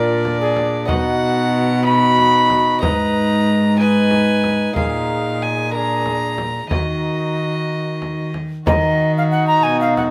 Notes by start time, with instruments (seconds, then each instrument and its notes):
Already playing: lute A#2 D4 F4 A#4, cello A#2, trombone D4, recorder A#4, violin D5
0.25 frame drum
0.41 recorder G#4
0.57 frame drum
0.85 lute B2 B3 D#4 D#5, trombone D#4, recorder F#4, violin F#5, frame drum
0.90 cello B2
1.83 lute B3 D#4 D#5, recorder F#4, violin B5
1.87 trombone D#4
2.18 frame drum
2.50 frame drum
2.79 lute G#2 B3 D#4 D#5, recorder B4, violin A#5, frame drum
2.84 cello G#2, trombone D#4
3.76 lute B3 D#4 D#5, recorder B4
3.80 trombone D#4, violin G#5
4.11 frame drum
4.44 frame drum
4.73 lute A#2 G#3 D#4 A#4, recorder G#4, violin F5, frame drum
4.77 cello A#2, trombone D#4
5.42 violin G#5
5.70 lute G#3 D4 A#4, trombone D4
5.74 recorder G#4, violin A#5
6.06 frame drum
6.38 frame drum
6.69 cello D#3, lute D#3 D#4 A#4, trombone D#4, recorder F#4, violin D#5, frame drum
8.02 frame drum
8.34 frame drum
8.66 lute D#3 D#4 A#4, cello D#3, trombone D#4, violin F#4, recorder D#5, frame drum
9.18 recorder F5
9.31 recorder F#5
9.47 recorder A#5
9.63 lute B2, cello B2, recorder G#5
9.81 recorder F5
9.97 recorder F#5, frame drum